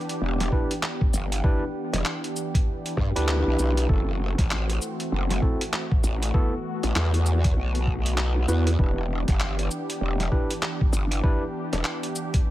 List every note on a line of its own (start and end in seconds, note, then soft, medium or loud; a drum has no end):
0.00 6.30 E3 medium
0.00 3.85 B3 medium
0.00 1.42 D4 medium
0.00 1.41 G4 medium
0.00 closed hi-hat soft
0.09 closed hi-hat medium
0.21 0.50 E1 medium
0.40 snare soft
0.40 closed hi-hat medium
0.52 0.72 D4 medium
0.52 0.72 E4 medium
0.52 0.72 G4 medium
0.52 0.72 B4 medium
0.52 kick medium
0.71 closed hi-hat medium
0.83 clap loud
1.01 kick loud
1.14 1.42 G1 loud
1.14 shaker medium
1.32 closed hi-hat medium
1.44 1.64 D4 loud
1.44 3.87 D4 medium
1.44 1.64 E4 medium
1.44 1.63 G4 medium
1.44 3.86 G4 medium
1.44 1.63 B4 loud
1.44 kick loud
1.93 2.03 E1 medium
1.93 snare soft
1.93 closed hi-hat medium
2.05 clap loud
2.24 closed hi-hat medium
2.36 shaker medium
2.55 kick loud
2.55 closed hi-hat medium
2.86 closed hi-hat medium
2.97 3.13 G2 loud
2.97 kick medium
3.16 3.44 D2 loud
3.16 3.86 D4 medium
3.16 3.86 E4 medium
3.16 3.86 G4 medium
3.16 3.86 B4 loud
3.16 closed hi-hat medium
3.28 clap loud
3.47 3.57 B1 loud
3.59 3.87 B1 loud
3.59 shaker medium
3.77 closed hi-hat medium
3.89 4.35 F#1 loud
3.89 8.75 A3 medium
3.89 6.31 C4 medium
3.89 4.09 C4 medium
3.89 4.09 E4 medium
3.89 4.08 F#4 medium
3.89 8.75 F#4 medium
3.89 4.09 A4 medium
3.89 kick loud
4.38 4.79 A1 loud
4.38 kick loud
4.38 snare soft
4.38 closed hi-hat medium
4.51 clap loud
4.70 closed hi-hat medium
4.81 shaker medium
5.00 closed hi-hat medium
5.12 5.41 F#1 loud
5.30 snare soft
5.30 closed hi-hat medium
5.42 5.62 C4 medium
5.42 5.62 E4 medium
5.42 5.62 F#4 medium
5.42 5.62 A4 medium
5.42 kick medium
5.61 closed hi-hat medium
5.73 clap loud
5.92 kick loud
6.04 6.32 A1 medium
6.04 shaker medium
6.22 closed hi-hat medium
6.34 12.51 E3 medium
6.34 11.20 B3 medium
6.34 6.54 B3 loud
6.34 6.54 E4 medium
6.34 6.54 F#4 medium
6.34 6.53 A4 loud
6.34 kick loud
6.83 6.93 A1 loud
6.83 closed hi-hat medium
6.95 7.55 E2 loud
6.95 clap loud
6.95 snare soft
7.14 closed hi-hat medium
7.26 shaker medium
7.44 kick loud
7.44 closed hi-hat medium
7.57 8.46 B1 medium
7.75 closed hi-hat soft
7.87 kick medium
8.06 closed hi-hat medium
8.18 clap loud
8.48 8.77 E2 loud
8.48 8.68 B3 medium
8.48 8.68 E4 medium
8.48 8.68 F#4 medium
8.48 8.68 B4 medium
8.48 shaker medium
8.67 closed hi-hat medium
8.79 9.25 E1 medium
8.79 12.51 D4 medium
8.79 8.98 D4 medium
8.79 8.98 E4 medium
8.79 11.21 G4 medium
8.79 8.98 G4 medium
8.79 8.98 B4 medium
8.79 kick loud
9.28 9.69 G1 medium
9.28 kick loud
9.28 snare soft
9.28 closed hi-hat medium
9.40 clap loud
9.59 closed hi-hat medium
9.71 shaker medium
9.90 closed hi-hat medium
10.01 10.30 E1 medium
10.20 snare soft
10.20 closed hi-hat soft
10.32 10.51 D4 medium
10.32 10.51 E4 medium
10.32 10.51 G4 medium
10.32 10.51 B4 medium
10.32 kick medium
10.51 closed hi-hat medium
10.62 clap loud
10.81 kick loud
10.93 11.22 G1 loud
10.93 shaker medium
11.12 closed hi-hat medium
11.23 12.51 B3 medium
11.23 11.43 D4 medium
11.23 11.43 E4 medium
11.23 11.43 G4 medium
11.23 12.51 G4 medium
11.23 11.43 B4 loud
11.23 kick loud
11.73 11.83 E1 loud
11.73 snare soft
11.73 closed hi-hat medium
11.84 clap loud
12.03 closed hi-hat medium
12.15 shaker medium
12.34 kick loud
12.34 closed hi-hat medium